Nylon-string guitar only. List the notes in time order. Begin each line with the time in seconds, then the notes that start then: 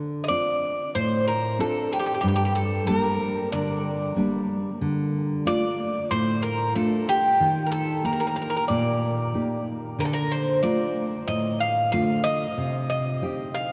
Already playing: D3
0.30 C4 D4 F4
0.95 A2
1.59 C4 D4 F4
2.23 G2
2.88 G3 A#3 D4
3.53 D3
4.16 G3 A#3 D4
4.81 D3
5.45 A3 D4 F4
6.11 A2
6.75 A3 D4 F4
7.40 D#3
8.04 A#3 D#4 G4
8.70 A#2
9.34 A#3 D#4 G4
9.99 D3
10.63 A3 D4 F4
11.27 A2
11.93 D3 A3 F4
12.58 C3
13.22 C4 D#4 G4